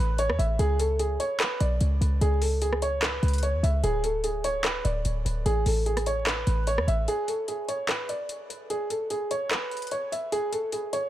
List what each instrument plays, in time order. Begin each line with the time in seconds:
Already playing: grand piano B4
0.00 808-style bass A1
0.18 grand piano C#5, closed hi-hat
0.29 808-style bass E2, cross-stick
0.39 808-style bass A1, grand piano E5, closed hi-hat
0.59 808-style bass C#2, grand piano G#4, closed hi-hat
0.79 grand piano A4, closed hi-hat
0.99 grand piano G#4, closed hi-hat
1.20 grand piano C#5, closed hi-hat
1.40 grand piano B4, clap, closed hi-hat
1.60 808-style bass B1, grand piano D5, closed hi-hat
1.80 808-style bass C#2, closed hi-hat
2.01 808-style bass C#2, closed hi-hat
2.21 808-style bass C#2, grand piano G#4, closed hi-hat
2.41 grand piano A4, open hi-hat
2.62 grand piano G#4, closed hi-hat
2.73 cross-stick
2.82 grand piano C#5, closed hi-hat
3.02 grand piano B4, clap, closed hi-hat
3.23 808-style bass C#2, closed hi-hat
3.28 closed hi-hat
3.33 closed hi-hat
3.38 closed hi-hat
3.43 grand piano C#5, closed hi-hat
3.54 808-style bass E2
3.63 808-style bass C#2, grand piano E5, closed hi-hat
3.83 808-style bass D1, grand piano G#4, closed hi-hat
4.04 grand piano A4, closed hi-hat
4.24 grand piano G#4, closed hi-hat
4.44 grand piano C#5, closed hi-hat
4.64 grand piano B4, clap, closed hi-hat
4.85 808-style bass D1, grand piano D5, closed hi-hat
5.05 808-style bass D1, closed hi-hat
5.25 808-style bass D1, closed hi-hat
5.46 808-style bass A1, grand piano G#4, closed hi-hat
5.66 808-style bass A1, grand piano A4, open hi-hat
5.86 grand piano G#4, closed hi-hat
5.97 cross-stick, closed hi-hat
6.06 grand piano C#5, closed hi-hat
6.27 grand piano B4, clap, closed hi-hat
6.47 808-style bass A1, closed hi-hat
6.67 grand piano C#5, closed hi-hat
6.78 808-style bass E2, cross-stick
6.87 808-style bass A1, grand piano E5, closed hi-hat
7.08 grand piano G#4, closed hi-hat
7.28 grand piano A4, closed hi-hat
7.48 grand piano G#4, closed hi-hat
7.68 grand piano C#5, closed hi-hat
7.89 grand piano B4, clap, closed hi-hat
8.09 grand piano D5, closed hi-hat
8.29 closed hi-hat
8.50 closed hi-hat
8.70 grand piano G#4, closed hi-hat
8.90 grand piano A4, closed hi-hat
9.10 grand piano G#4, closed hi-hat
9.31 grand piano C#5, closed hi-hat
9.51 grand piano B4, clap, closed hi-hat
9.71 closed hi-hat
9.77 closed hi-hat
9.82 closed hi-hat
9.87 closed hi-hat
9.91 grand piano C#5, closed hi-hat
10.12 grand piano E5, closed hi-hat
10.32 grand piano G#4, closed hi-hat
10.52 grand piano A4, closed hi-hat
10.72 grand piano G#4, closed hi-hat
10.93 grand piano C#5, closed hi-hat